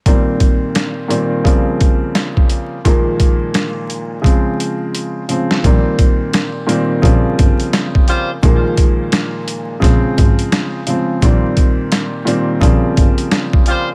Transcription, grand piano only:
X:1
M:4/4
L:1/8
Q:"Swing 16ths" 1/4=86
K:Bbdor
V:1 name="Grand piano" clef=bass
[B,,E,G,B,C]3 [B,,E,G,B,C] [D,F,G,B,C]4 | [B,,E,F,A,B,]4 [D,F,A,C]3 [D,F,A,C] | [B,,E,G,B,C]3 [B,,E,G,B,C] [D,F,G,B,C]4 | [B,,E,F,A,B,]4 [D,F,A,C]3 [D,F,A,C] |
[B,,E,G,B,C]3 [B,,E,G,B,C] [D,F,G,B,C]4 |]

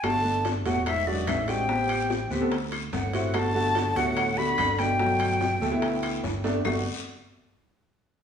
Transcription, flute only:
X:1
M:4/4
L:1/8
Q:1/4=145
K:G
V:1 name="Flute"
a2 z f e d e g- | g3 z3 f2 | a3 f2 b2 g- | g6 z2 |
z8 |]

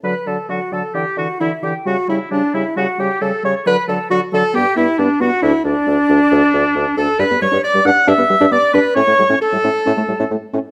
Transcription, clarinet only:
X:1
M:4/4
L:1/8
Q:1/4=134
K:D
V:1 name="Clarinet"
B A F A G F E G | F E D E F G A c | B A F A G E D F | E D6 A |
B c d f e2 d B | c2 A4 z2 |]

